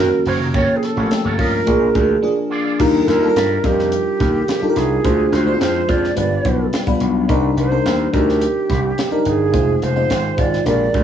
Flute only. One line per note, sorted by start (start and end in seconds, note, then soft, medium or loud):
0.00 0.23 A#4 loud
0.27 0.34 C5 loud
0.55 0.78 C#5 loud
0.77 0.86 G#4 medium
0.84 1.39 A4 loud
1.39 2.20 A#4 loud
3.02 3.11 A4 medium
3.10 3.68 A#4 medium
3.66 4.80 G4 loud
4.78 5.36 G#4 loud
5.34 5.62 C5 loud
5.63 5.92 C5 loud
5.90 6.18 D5 loud
6.18 6.70 D5 loud
7.58 8.10 C5 loud
8.15 9.23 G4 loud
9.27 9.85 G#4 loud
9.84 10.42 C5 loud
10.40 10.67 D5 loud
10.68 11.04 D5 loud